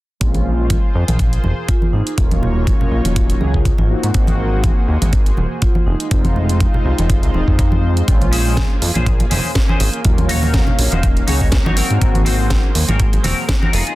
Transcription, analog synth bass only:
0.21 0.77 A#1 medium
0.95 1.04 F2 loud
1.08 1.39 A#1 medium
1.44 1.53 F1 medium
1.93 2.03 G#1 medium
2.18 2.74 D#1 medium
2.91 3.01 A#1 medium
3.05 3.35 D#1 medium
3.41 3.72 C#2 medium
3.79 3.95 G#1 medium
4.03 4.11 G#2 medium
4.15 4.71 G#1 medium
4.88 4.98 D#2 loud
5.02 5.32 G#1 medium
5.37 5.47 D#1 medium
5.87 5.96 F1 medium
6.11 6.67 F1 medium
6.85 6.94 C2 loud
6.99 7.22 F1 medium
7.23 7.31 C2 medium
7.34 7.44 D#1 medium
7.48 8.03 F2 medium
8.08 8.64 A#1 loud
8.82 8.91 F2 loud
8.96 9.26 A#1 medium
9.31 9.41 F1 medium
9.80 9.90 G#1 medium
10.05 10.61 D#1 medium
10.79 10.88 A#1 loud
10.92 11.22 D#1 loud
11.28 11.60 C#2 medium
11.66 11.82 G#1 medium
11.91 11.98 G#2 medium
12.02 12.58 G#1 loud
12.75 12.85 D#2 loud
12.89 13.19 G#1 medium
13.24 13.34 D#1 medium
13.73 13.83 F1 loud

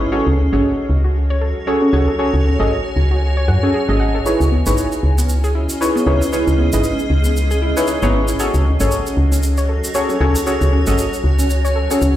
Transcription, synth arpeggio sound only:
0.01 0.04 E4 medium
0.38 0.42 C#4 medium
1.04 1.07 F#4 medium
1.30 1.35 C#5 loud
1.41 1.48 A4 medium
1.67 1.73 C#5 medium
1.82 1.89 C#4 loud
1.93 1.99 F#4 medium
2.08 2.11 A4 medium
2.45 2.48 C#4 medium
3.11 3.14 F#4 medium
3.37 3.42 C#5 loud
3.48 3.54 F#5 medium
3.63 3.68 C#4 medium
3.74 3.80 G#4 loud
3.89 3.93 G#4 medium
4.00 4.09 F#5 loud
4.15 4.19 A4 medium
4.51 4.55 B3 medium
5.18 5.25 B3 medium
5.44 5.49 G#4 loud
5.55 5.61 E4 medium
5.81 5.87 G#4 medium
5.96 6.03 B3 loud
6.07 6.13 C#4 medium
6.21 6.24 E4 medium
6.58 6.62 B3 medium
7.25 7.32 B3 medium
7.51 7.56 G#4 loud
7.62 7.68 E4 medium
7.88 7.94 G#4 medium
8.02 8.10 B3 loud
8.14 8.20 C#4 medium
8.28 8.31 E4 medium
8.65 8.69 C#4 medium
9.32 9.39 C#4 medium
9.58 9.62 C#5 loud
9.69 9.75 A4 medium
9.95 10.01 C#5 medium
10.09 10.17 C#4 loud
10.21 10.27 F#4 medium
10.35 10.38 A4 medium
10.72 10.76 C#4 medium
11.39 11.46 C#4 medium
11.65 11.69 C#5 loud
11.76 11.82 A4 medium
11.90 11.98 F#4 medium
12.01 12.08 C#4 loud

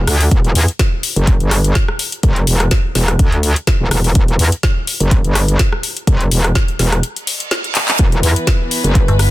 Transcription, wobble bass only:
0.07 0.30 D2 medium
0.31 0.54 E1 medium
0.55 0.66 E2 loud
1.16 1.38 F#1 loud
1.40 1.74 G1 loud
2.23 2.46 F#1 loud
2.47 2.70 E1 loud
2.95 3.18 E1 loud
3.19 3.54 D2 medium
3.80 3.90 E1 loud
3.91 4.14 E1 medium
4.15 4.38 E1 loud
4.39 4.50 E2 loud
5.00 5.22 F#1 loud
5.24 5.58 G1 loud
6.07 6.30 F#1 medium
6.31 6.54 E1 loud
6.79 7.02 E1 loud
7.99 8.22 E1 medium
8.23 8.34 E2 loud
8.84 9.06 F#1 loud

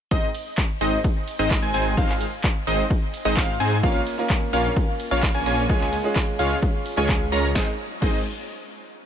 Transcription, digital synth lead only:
0.11 0.29 D#5 loud
0.81 0.99 D#5 loud
1.39 1.60 D#5 loud
1.62 1.72 G#5 medium
1.74 1.95 G#5 loud
1.97 2.26 F5 medium
2.67 2.85 D#5 medium
3.25 3.35 D#5 loud
3.37 3.57 F5 loud
3.60 3.78 G#5 loud
3.83 4.01 F5 loud
4.53 4.71 F5 medium
5.11 5.32 F5 loud
5.34 5.44 G#5 medium
5.46 5.67 G#5 loud
5.69 5.98 G#5 medium
6.39 6.57 F5 medium
6.97 7.15 G#5 loud
7.32 7.50 A#5 loud
7.55 7.68 D#5 loud
8.02 8.19 D#5 loud

